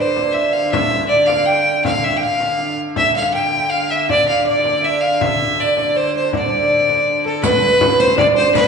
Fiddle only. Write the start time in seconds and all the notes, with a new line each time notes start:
Already playing: C5
0.32 E5
0.53 F5
0.72 E5
1.09 D5
1.26 F5
1.45 G5
1.84 F5
2.04 E5
2.17 G5
2.23 F5
2.97 E5
3.16 F5
3.34 G5
3.70 F5
3.91 E5
4.10 D5
4.28 F5
4.47 D5
4.84 E5
5.01 F5
5.21 E5
5.60 D5
5.96 C5
6.16 C5
6.36 D5
7.26 A4
7.43 B4
8.00 C5
8.18 D5
8.36 C5
8.54 B4